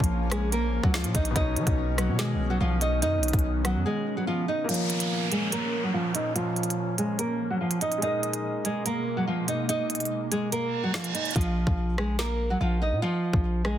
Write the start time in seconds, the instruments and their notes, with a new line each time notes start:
Already playing: nylon-string guitar F3 F4, ambient pad F3 A#3 C#4, grand piano A#3 A#4 C#5 F5
0.00 808-style bass A#1, kick, closed hi-hat
0.31 nylon-string guitar G#3 G#4, cross-stick, closed hi-hat
0.52 nylon-string guitar A#3 A#4, closed hi-hat
0.83 808-style bass C#2, nylon-string guitar F#3 F#4, kick
0.94 nylon-string guitar F3 F4, snare
1.04 808-style bass A#2, closed hi-hat
1.15 808-style bass A#1, nylon-string guitar D#4 D#5, kick, closed hi-hat
1.25 closed hi-hat
1.31 grand piano B2 B3
1.36 808-style bass B1, ambient pad D#3 B3, nylon-string guitar D#4 D#5, grand piano D#4, kick, closed hi-hat
1.40 grand piano C#5
1.56 808-style bass F#3, closed hi-hat
1.67 808-style bass B1, kick, closed hi-hat
1.98 nylon-string guitar F#3 F#4, cross-stick, closed hi-hat
2.08 808-style bass B2
2.19 nylon-string guitar G#3 G#4, snare, closed hi-hat
2.35 808-style bass B1
2.50 nylon-string guitar F#3 F#4
2.60 808-style bass B1, nylon-string guitar F3 F4
2.81 nylon-string guitar D#4 D#5, closed hi-hat
3.02 808-style bass F#2, nylon-string guitar D#4 D#5, closed hi-hat
3.18 808-style bass B1
3.23 closed hi-hat
3.28 closed hi-hat
3.33 808-style bass B1, kick, closed hi-hat
3.39 closed hi-hat
3.65 nylon-string guitar F#3 F#4, cross-stick, closed hi-hat
3.75 808-style bass F#2
3.86 nylon-string guitar G#3 G#4
4.17 nylon-string guitar F#3 F#4
4.27 nylon-string guitar F3 F4
4.48 nylon-string guitar D#4 D#5
4.64 grand piano A#3 A#4
4.69 ambient pad A#2 F3 C#4, nylon-string guitar F3 F4, grand piano C#5, closed hi-hat, downlifter
4.73 grand piano F5, closed hi-hat
4.90 closed hi-hat
5.00 closed hi-hat
5.31 nylon-string guitar G#3 G#4, closed hi-hat
5.52 nylon-string guitar A#3 A#4, closed hi-hat
5.83 nylon-string guitar F#3 F#4
5.94 nylon-string guitar F3 F4
6.15 nylon-string guitar D#4 D#5, closed hi-hat
6.36 nylon-string guitar F3 F4, closed hi-hat
6.56 closed hi-hat
6.63 closed hi-hat
6.70 closed hi-hat
6.98 nylon-string guitar G#3 G#4, closed hi-hat
7.19 nylon-string guitar A#3 A#4, closed hi-hat
7.50 nylon-string guitar F#3 F#4
7.61 nylon-string guitar F3 F4
7.71 closed hi-hat
7.81 nylon-string guitar D#4 D#5, closed hi-hat
7.92 closed hi-hat
7.98 grand piano G#3 G#4
8.02 ambient pad B2 G#3 A#3, nylon-string guitar D#4 D#5, grand piano A#4, closed hi-hat
8.07 grand piano D#5
8.23 closed hi-hat
8.33 closed hi-hat
8.65 nylon-string guitar G#3 G#4, closed hi-hat
8.86 nylon-string guitar A#3 A#4, closed hi-hat
9.17 nylon-string guitar F#3 F#4
9.27 nylon-string guitar F3 F4
9.48 nylon-string guitar D#4 D#5, closed hi-hat
9.69 nylon-string guitar D#4 D#5, closed hi-hat
9.90 closed hi-hat
9.95 closed hi-hat
10.00 closed hi-hat
10.05 closed hi-hat
10.31 nylon-string guitar G#3 G#4, closed hi-hat
10.52 nylon-string guitar A#3 A#4, closed hi-hat, reverse cymbal
10.83 nylon-string guitar F#3 F#4
10.94 nylon-string guitar F3 F4, snare
11.04 closed hi-hat
11.15 nylon-string guitar D#4 D#5, closed hi-hat
11.25 closed hi-hat
11.31 closed hi-hat
11.35 808-style bass A#1, nylon-string guitar F3 F4, kick, closed hi-hat
11.41 closed hi-hat
11.67 808-style bass A#1, kick
11.98 nylon-string guitar G#3 G#4, cross-stick
12.19 nylon-string guitar A#3 A#4, snare
12.50 nylon-string guitar F#3 F#4
12.61 808-style bass A#1, nylon-string guitar F3 F4
12.82 nylon-string guitar D#4 D#5
12.92 808-style bass A#2
13.02 nylon-string guitar F3 F4
13.33 808-style bass A#1, kick
13.65 nylon-string guitar G#3 G#4, cross-stick